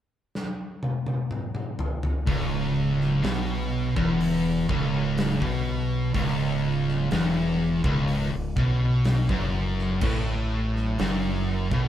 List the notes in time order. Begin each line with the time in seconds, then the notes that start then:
0.35 snare
0.83 high tom
1.06 high tom
1.31 mid tom
1.55 mid tom
1.79 floor tom
2.03 floor tom
2.26 C#1 C#2, kick, open hi-hat
3.01 snare
3.23 B1 B2, snare, open hi-hat
3.96 E1 E2, kick
4.20 open hi-hat
4.68 C#1 C#2, kick
5.18 snare, open hi-hat
5.41 B1 B2, kick
6.13 C#1 C#2, kick, open hi-hat
6.88 snare
7.10 E1 E2, snare, open hi-hat
7.83 C#1 C#2, kick
8.08 open hi-hat
8.32 C#1 C#2
8.56 B1 B2, kick
9.04 snare, open hi-hat
9.29 F#1 F#2, kick
9.79 snare
10.01 A1 A2, kick, crash
10.76 snare
10.99 F#1 F#2, snare, open hi-hat
11.71 B1 B2, kick